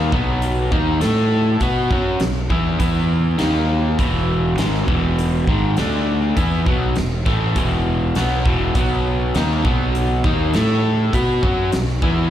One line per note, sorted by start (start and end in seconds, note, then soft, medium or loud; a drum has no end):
0.00 0.10 D#2 medium
0.00 0.11 D#3 medium
0.00 0.12 A#3 medium
0.00 0.12 D#4 medium
0.12 0.68 B1 medium
0.12 0.71 B2 medium
0.12 0.71 F#3 medium
0.12 0.72 B3 medium
0.12 kick loud
0.42 closed hi-hat medium
0.72 1.00 D#2 medium
0.72 1.01 D#3 medium
0.72 1.00 A#3 medium
0.72 1.01 D#4 loud
0.72 kick loud
1.01 1.58 A2 medium
1.01 1.60 A3 medium
1.01 1.60 E4 medium
1.01 1.60 A4 medium
1.01 snare medium
1.01 closed hi-hat medium
1.61 1.88 B2 medium
1.61 1.90 B3 medium
1.61 1.91 F#4 loud
1.61 1.91 B4 medium
1.61 kick medium
1.61 closed hi-hat medium
1.91 2.18 F#2 medium
1.91 2.20 F#3 medium
1.91 2.20 C#4 medium
1.91 2.20 F#4 medium
1.91 kick loud
2.20 2.48 B1 medium
2.20 2.45 B2 medium
2.20 2.45 F#3 medium
2.20 snare loud
2.20 closed hi-hat medium
2.50 2.78 E2 medium
2.50 2.78 E3 medium
2.50 2.79 B3 medium
2.50 2.79 E4 medium
2.50 kick medium
2.79 3.35 E2 loud
2.79 3.38 E3 medium
2.79 3.38 B3 medium
2.79 3.39 E4 medium
2.79 kick loud
2.79 closed hi-hat medium
3.38 3.96 D#2 medium
3.38 3.97 D#3 medium
3.38 3.98 A#3 loud
3.38 3.98 D#4 medium
3.38 snare medium
3.38 closed hi-hat medium
3.99 4.55 E1 medium
3.99 4.57 E2 medium
3.99 4.58 B2 medium
3.99 4.58 E3 loud
3.99 kick medium
3.99 closed hi-hat medium
4.58 4.86 G#1 medium
4.58 4.87 G#2 medium
4.58 4.87 D#3 medium
4.58 4.88 G#3 medium
4.58 snare loud
4.58 closed hi-hat medium
4.75 snare soft
4.87 5.44 E1 medium
4.87 5.46 E2 medium
4.87 5.47 B2 medium
4.87 5.47 E3 medium
4.87 kick loud
5.19 closed hi-hat medium
5.47 5.75 G#1 medium
5.47 5.77 G#2 medium
5.47 5.77 D#3 medium
5.47 5.77 G#3 medium
5.47 kick loud
5.77 6.33 D2 medium
5.77 6.36 D3 medium
5.77 6.36 A3 medium
5.77 6.36 D4 medium
5.77 snare loud
5.77 closed hi-hat medium
6.36 6.65 E2 medium
6.36 6.66 E3 medium
6.36 6.66 B3 medium
6.36 6.66 E4 loud
6.36 kick medium
6.36 closed hi-hat medium
6.66 6.94 B1 medium
6.66 6.95 B2 medium
6.66 6.96 F#3 medium
6.66 6.96 B3 medium
6.66 kick loud
6.95 7.25 E1 medium
6.95 7.20 E2 medium
6.95 7.20 B2 medium
6.95 snare loud
6.95 closed hi-hat medium
7.26 7.54 A1 medium
7.26 7.55 A2 medium
7.26 7.55 E3 loud
7.26 7.56 A3 medium
7.26 kick loud
7.26 snare soft
7.56 8.11 E1 medium
7.56 8.15 E2 medium
7.56 8.15 B2 medium
7.56 8.15 E3 loud
7.56 kick loud
7.56 closed hi-hat medium
8.15 8.44 B1 medium
8.15 8.45 B2 medium
8.15 8.45 F#3 medium
8.15 8.45 B3 loud
8.15 snare loud
8.15 closed hi-hat medium
8.45 8.73 E1 medium
8.45 8.74 E2 medium
8.45 8.74 B2 loud
8.45 8.75 E3 loud
8.45 kick loud
8.75 9.31 B1 medium
8.75 9.34 B2 medium
8.75 9.34 F#3 medium
8.75 9.34 B3 loud
8.75 kick medium
8.75 closed hi-hat medium
9.35 9.63 D#2 medium
9.35 9.64 D#3 medium
9.35 9.64 A#3 medium
9.35 9.64 D#4 loud
9.35 snare loud
9.35 closed hi-hat medium
9.64 10.20 B1 medium
9.64 10.23 B2 medium
9.64 10.23 F#3 medium
9.64 10.24 B3 loud
9.64 kick loud
9.95 closed hi-hat medium
10.24 10.52 D#2 medium
10.24 10.53 D#3 medium
10.24 10.54 A#3 medium
10.24 10.54 D#4 medium
10.24 kick loud
10.53 11.10 A2 medium
10.53 11.13 A3 medium
10.53 11.13 E4 medium
10.53 11.13 A4 loud
10.53 snare medium
10.53 closed hi-hat medium
11.13 11.41 B2 medium
11.13 11.43 B3 medium
11.13 11.43 F#4 medium
11.13 11.43 B4 loud
11.13 kick medium
11.13 closed hi-hat medium
11.43 11.71 F#2 medium
11.43 11.72 F#3 medium
11.43 11.72 C#4 loud
11.43 11.72 F#4 medium
11.43 kick loud
11.72 12.02 B1 medium
11.72 11.97 B2 medium
11.72 11.97 F#3 medium
11.72 snare loud
11.72 closed hi-hat medium
11.89 snare soft
12.02 12.30 E2 medium
12.02 12.30 E3 medium
12.02 12.30 B3 medium
12.02 12.30 E4 medium
12.02 kick loud